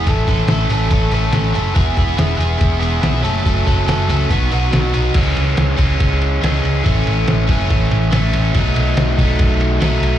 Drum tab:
CC |--------|--------|--------|x-------|
RD |--------|--------|--------|xxxxxxxx|
HH |xxxxxxxx|xxxxxxxx|xxxxxxxx|--------|
SD |--o---o-|--o---o-|--o---o-|--o---o-|
BD |oo--o---|oo--o---|oo--o---|o--oo---|

CC |--------|--------|
RD |xxxxxxxx|xxxxxxxx|
HH |--------|--------|
SD |--o---o-|--o---o-|
BD |o--oo---|o--oo---|